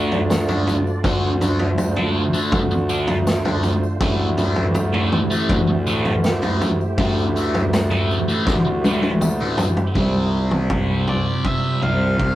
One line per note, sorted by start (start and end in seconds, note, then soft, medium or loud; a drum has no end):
0.00 0.84 D2 medium
0.00 10.04 D2 medium
0.00 0.18 D3 medium
0.00 0.18 A3 medium
0.00 3.98 A3 medium
0.00 0.18 D4 medium
0.00 3.97 D4 medium
0.00 3.97 F4 medium
0.00 1.02 D5 medium
0.12 floor tom medium
0.12 tambourine soft
0.30 snare medium
0.30 mid tom medium
0.30 tambourine medium
0.48 0.74 D3 medium
0.48 0.74 A3 medium
0.48 0.73 D4 medium
0.48 floor tom medium
0.48 tambourine soft
0.67 floor tom medium
0.67 tambourine medium
0.87 tambourine soft
1.04 2.32 D2 medium
1.04 1.29 D3 medium
1.04 1.29 A3 loud
1.04 1.30 D4 medium
1.04 3.99 C5 medium
1.04 kick loud
1.04 floor tom medium
1.04 tambourine soft
1.41 1.66 D3 medium
1.41 1.66 A3 medium
1.41 1.67 D4 medium
1.41 floor tom medium
1.41 tambourine medium
1.59 floor tom medium
1.78 floor tom medium
1.78 tambourine medium
1.96 2.22 D3 medium
1.96 2.22 A3 medium
1.96 2.21 D4 medium
1.96 floor tom medium
2.33 2.59 D3 medium
2.33 2.59 A3 medium
2.33 2.58 D4 loud
2.33 tambourine medium
2.52 3.80 D2 loud
2.52 kick loud
2.52 floor tom medium
2.71 muted distorted electric guitar stroke medium
2.71 tambourine soft
2.89 3.14 D3 medium
2.89 3.14 A3 medium
2.89 3.14 D4 medium
2.89 tambourine medium
3.07 floor tom medium
3.07 tambourine soft
3.27 snare medium
3.27 mid tom medium
3.27 tambourine medium
3.45 3.70 D3 medium
3.45 3.70 A3 medium
3.45 3.70 D4 medium
3.45 floor tom medium
3.63 floor tom medium
3.63 tambourine medium
3.83 tambourine soft
4.01 5.29 D2 medium
4.01 4.25 A2 medium
4.01 4.26 E3 medium
4.01 9.92 A3 medium
4.01 4.26 A3 medium
4.01 9.93 E4 medium
4.01 9.93 G4 medium
4.01 9.93 C5 medium
4.01 kick loud
4.01 floor tom medium
4.01 tambourine soft
4.38 4.62 A2 medium
4.38 4.63 E3 medium
4.38 4.63 A3 medium
4.38 floor tom medium
4.38 tambourine medium
4.56 floor tom medium
4.75 floor tom medium
4.75 tambourine medium
4.93 5.19 A2 medium
4.93 5.18 E3 medium
4.93 5.18 A3 medium
4.93 floor tom medium
5.12 mid tom medium
5.30 5.56 A2 medium
5.30 5.55 E3 loud
5.30 5.55 A3 loud
5.30 tambourine medium
5.49 6.77 D2 medium
5.49 kick loud
5.49 floor tom medium
5.49 tambourine soft
5.68 muted distorted electric guitar stroke medium
5.86 6.11 A2 medium
5.86 6.11 E3 medium
5.86 6.11 A3 medium
5.86 tambourine medium
6.05 floor tom medium
6.05 tambourine soft
6.24 snare medium
6.24 mid tom medium
6.24 tambourine medium
6.42 6.67 A2 medium
6.42 6.67 E3 medium
6.42 6.67 A3 loud
6.42 floor tom medium
6.42 tambourine soft
6.61 floor tom medium
6.61 tambourine medium
6.81 tambourine soft
6.98 8.26 D2 loud
6.98 7.23 A2 medium
6.98 7.23 E3 medium
6.98 7.23 A3 medium
6.98 kick loud
6.98 floor tom medium
6.98 tambourine soft
7.18 tambourine soft
7.36 7.60 A2 medium
7.36 7.60 E3 medium
7.36 7.60 A3 medium
7.36 tambourine medium
7.54 floor tom medium
7.54 tambourine soft
7.73 snare medium
7.73 floor tom loud
7.73 tambourine medium
7.90 8.16 A2 medium
7.90 8.15 E3 medium
7.90 8.15 A3 medium
7.90 floor tom medium
7.90 tambourine soft
8.11 tambourine soft
8.28 8.53 A2 medium
8.28 8.53 E3 medium
8.28 8.53 A3 medium
8.28 tambourine medium
8.46 9.75 D2 medium
8.46 kick loud
8.46 snare medium
8.46 tambourine soft
8.65 muted distorted electric guitar stroke medium
8.84 9.09 A2 medium
8.84 9.09 E3 medium
8.84 9.09 A3 medium
8.84 high tom medium
8.84 tambourine medium
9.03 high tom medium
9.03 tambourine soft
9.21 mid tom medium
9.21 tambourine loud
9.40 9.65 A2 medium
9.40 9.65 E3 medium
9.40 9.65 A3 medium
9.40 tambourine soft
9.58 floor tom loud
9.58 tambourine medium
9.77 floor tom medium
9.77 tambourine soft
9.95 11.24 C2 medium
9.95 12.35 C3 medium
9.95 12.35 G3 medium
9.95 12.35 C4 medium
9.95 12.35 F4 medium
9.95 12.35 C5 medium
9.95 kick loud
9.95 floor tom medium
10.51 mid tom medium
10.70 kick loud
10.70 floor tom medium
11.07 11.47 D5 medium
11.07 floor tom medium
11.45 11.80 E5 medium
11.45 kick loud
11.82 12.15 C2 medium
11.82 12.35 F5 medium
11.82 floor tom medium
12.19 12.35 C2 medium
12.19 kick loud